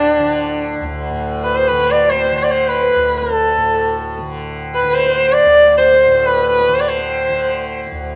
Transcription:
Already playing: D2 A2 D3 D4
0.18 D3
0.81 D2
1.10 A2
1.44 B4
1.56 B4 C5
1.68 D3 B4
1.81 B4
1.91 D5
2.10 C5
2.18 D5
2.25 C5
2.31 D3
2.37 C5
2.43 D5
2.51 C5
2.69 B4
2.82 B4
2.95 D2
3.18 A#4
3.23 B4
3.30 A4
3.57 A2
4.20 D3
4.74 B4
4.83 D3
4.88 B4
4.94 C5
5.07 C5
5.32 D5
5.45 D2 D5
5.78 C5
5.91 C5
6.06 A2
6.26 B4
6.38 B4
6.50 B4
6.61 B4
6.68 D3
6.74 C5
6.80 D5
6.88 C5
7.00 C5
7.29 D3
7.91 D2

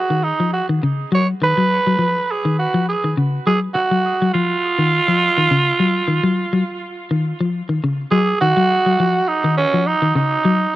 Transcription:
Already playing: F#4
0.10 D#3
0.24 D#4
0.40 F3
0.53 F#4
0.69 D#3
0.83 C#3
1.12 F#3 C#5
1.42 D#3 B4
1.58 F#3
1.87 F#3
1.99 F3
2.31 G#4
2.45 D#3
2.59 F#4
2.74 F3
2.89 G#4
3.04 D#3
3.17 C#3
3.47 F#3 G#4
3.74 F#4, muted clean electric guitar stroke
3.91 F#3
4.22 F#3
4.34 F3 F4
4.79 D#3
5.08 F3
5.38 D#3
5.51 C#3
5.80 F#3
6.08 D#3
6.24 F#3
6.53 F#3
7.11 D#3
7.41 F3
7.69 D#3
7.84 C#3
8.11 F#3 G#4
8.41 D#3 F#4
8.57 F#3
8.86 F#3
9.00 F3
9.28 D#4
9.44 D#3
9.57 C#4
9.74 F3
9.87 D#4
10.02 D#3
10.15 C#3 D#4
10.45 F#3

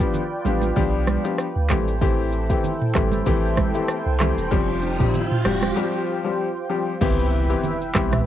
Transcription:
Already playing: F4 B4 D5 G5
0.00 F3 B3 D4 G4, kick, shaker
0.14 low conga, shaker
0.45 A1 F3 B3 D4 G4, high conga, shaker
0.62 high conga, shaker
0.76 B1 F3 B3 D4 G4, kick, low conga, shaker
1.07 cross-stick, high conga, shaker
1.25 F3 B3 D4 G4, shaker
1.39 cross-stick, shaker
1.56 D2
1.70 A1 E3 A3 C4 E4 G4 A4 C5 G5, kick, cross-stick, clap, high conga, low conga, shaker
1.88 shaker
2.01 E3 A3 C4 G4, kick, riser, low conga, shaker
2.32 shaker
2.50 E3 A3 C4 G4, kick, shaker
2.64 low conga, shaker
2.82 mid tom
2.95 G1 E3 A3 C4 G4, kick, cross-stick, clap, high conga, shaker
3.12 high conga, shaker
3.26 A1 E3 A3 C4 G4, kick, low conga, shaker
3.57 kick, cross-stick, high conga, shaker
3.75 E3 A3 C4 G4, shaker
3.88 cross-stick, shaker
4.06 C2
4.20 E3 A3 C4 G4, cross-stick, clap, high conga, low conga, shaker
4.38 E1, shaker
4.51 F1 F3 G3 C4 F4 G4, kick, low conga, shaker
4.82 shaker
5.00 F3 G3 C4 G4, kick, mid tom, shaker
5.14 low conga, shaker
5.31 mid tom
5.45 E1 F3 G3 C4 G4, cross-stick, high conga, shaker
5.62 cross-stick, high conga, shaker
5.76 F3 G3 C4 G4
6.25 F3 G3 C4 G4
6.70 F3 G3 C4 G4
7.01 C2 E3 B3 C4 E4 G4 B4 E5 G5, kick, crash, impact, low conga, shaker
7.19 shaker
7.50 E3 B3 C4 G4, shaker
7.64 low conga, shaker
7.81 shaker
7.95 B1 E3 B3 C4 G4, kick, cross-stick, clap, high conga, shaker
8.12 cross-stick, mid tom, high conga, shaker

